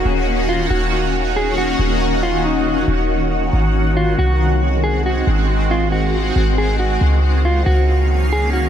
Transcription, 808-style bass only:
X:1
M:4/4
L:1/8
Q:1/4=138
K:Ebdor
V:1 name="808-style bass" clef=bass
E,,,3 E,,,4- E,,, | E,,,4- E,,, E,,,3 | A,,,3 C,,4- C,, | A,,,4- A,,, A,,,3 |
D,,3 D,,4- D,, |]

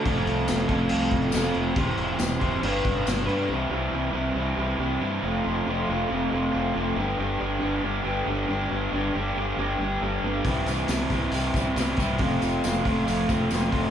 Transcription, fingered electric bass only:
X:1
M:4/4
L:1/8
Q:1/4=138
K:C
V:1 name="Fingered electric bass" clef=bass
F,,, C,, F,,, F,,, C,, F,,, F,,, F,,, | E,,, E,,, E,,, E,,, G,,, G,,, G,,, G,, | C,, C,, C,, C,, C,, C,, C,, G,, | F,,, F,,, F,,, F,,, F,,, F,,, F,,, F,,, |
G,,, G,,, G,,, G,,, G,,, G,,, G,,, G,,, | G,,, G,,, G,,, G,,, G,,, G,,, G,,, G,,, | C,, C,, C,, C,, C,, C,, C,, C,, | F,,, F,,, F,,, F,,, F,,, F,,, F,,, F,,, |]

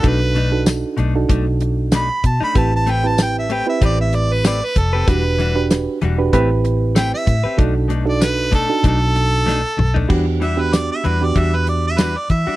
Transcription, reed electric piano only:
X:1
M:4/4
L:1/16
Q:"Swing 16ths" 1/4=96
K:Em
V:1 name="Reed electric piano"
[D^DFA]2 z [=D^DFA]3 z [=D^DFA]6 z3 | [CEGB]2 z [CEGB]3 z [CEGB]6 z3 | [DFGB]2 z [DFGB]3 z [DFGB] [CEGB]6 z2 | [D^DFA]2 z [=D^DFA]3 z [=D^DFA]6 z3 |
[B,DFG]2 z [B,DFG]3 z [B,DFG]6 z3 |]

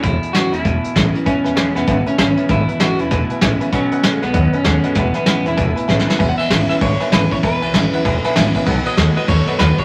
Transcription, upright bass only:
X:1
M:4/4
L:1/8
Q:"Swing" 1/4=194
K:E
V:1 name="Upright bass" clef=bass
E,,, z G,,, E,,, E,,, z A,,, z | E,,, E,,, E,,, E,,, G,,, z G,,, z | G,,, z G,,, E,,, E,,, z A,,, z | B,,, B,,, B,,, B,,, D,, z D,, z |
E,,, z G,,, E,,, E,,, z A,,, z | E,,, z G,,, z G,,, z G,,, z | E,,, B,,, G,,, z E,,, z G,,, z | B,,, z D,, z D,, z D,, z |]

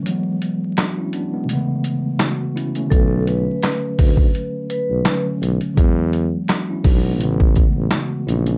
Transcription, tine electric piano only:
X:1
M:4/4
L:1/16
Q:"Swing 16ths" 1/4=84
K:Bdor
V:1 name="Tine electric piano"
z4 [DF] [CE] [B,D] [G,B,]2 z3 F2 [CE] [A,C]- | [A,C] z12 z3 | z4 [DF] [CE] [B,D] [G,B,]2 z3 F2 [CE] [A,C] |]
V:2 name="Tine electric piano" clef=bass
[E,F,G,B,]8 [=C,^C,E,A,B,]8 | [D,F,A,C]12 [D,F,A,C]4 | [E,F,G,B,]8 [=C,^C,E,A,B,]8 |]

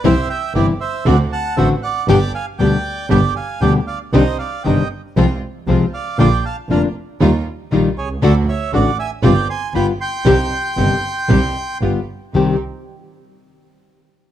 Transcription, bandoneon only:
X:1
M:4/4
L:1/8
Q:1/4=118
K:Cm
V:1 name="Bandoneon"
[c=e] [eg] [Gd] [ce] [d^f] [f=a] [ce] [df] | [dg] [fa] [dg]2 [dg] [fa] [dg] [df] | [ce] [df] [eg] z4 [df] | [dg] [f=a] [fb] z4 [_A_d] |
[=Ad] [_d=e] [=d^f] [e_a] [dg] [ac'] [g=b] [gc']- | [gc']6 z2 | z8 |]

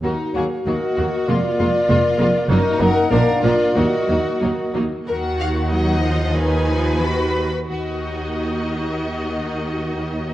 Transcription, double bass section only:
X:1
M:2/4
L:1/8
Q:1/4=93
K:Ebm
V:1 name="Double bass section" clef=bass
E,, E,, E,, E,, | F,,, F,,, F,,, F,,, | G,,, G,,, B,,, B,,, | E,, E,, E,, E,, |
E,,4- | E,,3 z | E,,4- | E,,4 |]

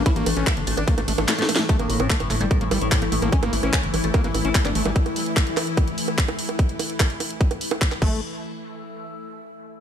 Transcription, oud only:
X:1
M:4/4
L:1/16
Q:1/4=147
K:none
V:1 name="Oud" clef=bass
E A, A, A, E A, A, D A, A, z A, A, A, A, A, | A, A,, A,, A,, A, A,, A,, G, A,, A,, z A,, A,, A, A,, A,, | ^C E, E, E, C E, E, A, E, E, z E, E, D E, E, | z16 |
z16 | z16 |]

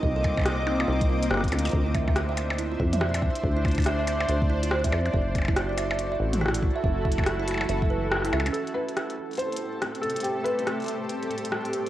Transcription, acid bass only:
X:1
M:4/4
L:1/8
Q:"Swing 16ths" 1/4=141
K:Ador
V:1 name="Acid bass" clef=bass
C,,4 C,,2 G,,, D,, | D,,4- D,, =F,,2 z | D,,4 D,,3 =F,, | F,,,4- F,,, A,,,2 z |
F,,,4 F,,,3 ^C,, | z8 | z8 |]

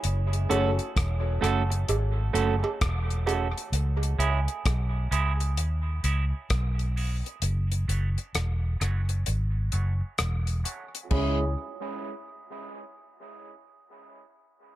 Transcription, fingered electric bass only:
X:1
M:4/4
L:1/16
Q:"Swing 16ths" 1/4=65
K:C#m
V:1 name="Fingered electric bass" clef=bass
F,,,2 F,,, z E,,,2 F,,,2 G,,,2 F,,, z E,,,3 z | C,,2 C,, z B,,,2 C,,2 D,,2 C,, z B,,,3 z | F,,,2 F,,, z E,,,2 F,,,2 G,,,2 F,,, z E,,,2 z2 | C,,2 z12 z2 |]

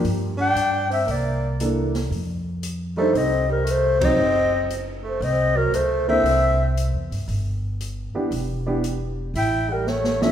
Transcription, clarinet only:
X:1
M:4/4
L:1/8
Q:"Swing" 1/4=116
K:Cmix
V:1 name="Clarinet"
z g2 e d2 z2 | z3 c _e B c e- | _e2 z c ^d B c =e- | e2 z6 |
z4 g B _d e |]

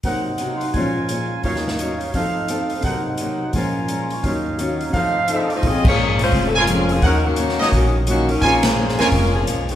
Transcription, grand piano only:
X:1
M:4/4
L:1/16
Q:"Swing" 1/4=172
K:Bbm
V:1 name="Grand piano"
z4 (3g2 f2 e2- e z3 d2 f2- | f z3 e2 f3 z3 (3=a2 f2 e2- | e z12 z3 | z4 e f g b z4 e f =a c' |
z16 | z16 | z16 |]
V:2 name="Grand piano"
[C,G,B,Ec]8 [B,,F,A,Dc]8 | [E,,E,G,Fd]8 [F,,F,=A,Ec]8 | [C,G,B,Ec]8 [B,,F,A,Dc]8 | [E,,E,G,Fd]8 [F,,F,=A,E]8 |
z12 [F,B,CDA]4 | z12 [G,B,DEF]4 | [A,B,CDF]2 z4 [A,B,CDF]2 z8 |]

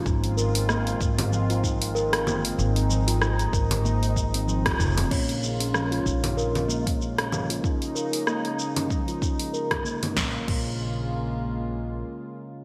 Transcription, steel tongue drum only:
X:1
M:4/4
L:1/16
Q:"Swing 16ths" 1/4=95
K:Bbm
V:1 name="Steel tongue drum"
E z B z B, z2 C F, F E z B z B, z | z C F, F E z B z B, z2 C F, F E z | B, z2 D F, F E z B z B, z2 D F, F | E z B z B, z2 D F, F E z B z B, z |
B, z B, z12 z |]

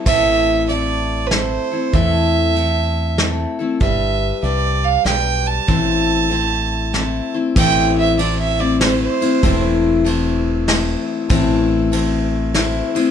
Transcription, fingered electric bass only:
X:1
M:3/4
L:1/8
Q:"Swing" 1/4=96
K:Am
V:1 name="Fingered electric bass" clef=bass
A,,,6 | E,,6 | G,,,2 C,,2 B,,,2 | A,,,6 |
A,,,6 | E,,,6 | A,,,6 |]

